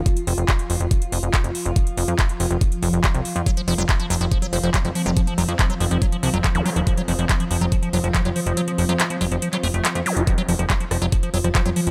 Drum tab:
HH |xxoxxxoxxxoxxxox|xxoxxxoxxxoxxxox|xxoxxxoxxxoxxxox|xxoxxxoxxxoxxxox|
CP |----x-------x---|----x-------x---|----x-------x---|----x-------x---|
SD |----------------|----------------|----------------|----------------|
BD |o---o---o---o---|o---o---o---o---|o---o---o---o---|o---o---o---o---|

HH |xxoxxxoxxxoxxxox|xxoxxxoxxxoxxxox|xxoxxxoxxxoxxxox|
CP |----x-------x---|----x----x--x---|----x-------x---|
SD |----------------|----------------|r-----r----r----|
BD |o---o---o---o---|----------------|o---o---o---o---|